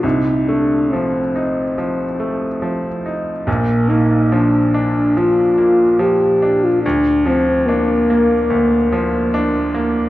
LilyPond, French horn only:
\new Staff \with { instrumentName = "French horn" } { \time 4/4 \key bes \major \tempo 4 = 71 ees'8 d'8 c'2~ c'8 r8 | bes8 ees'8 d'4 f'4 g'8. f'16 | d'8 c'8 bes2~ bes8 r8 | }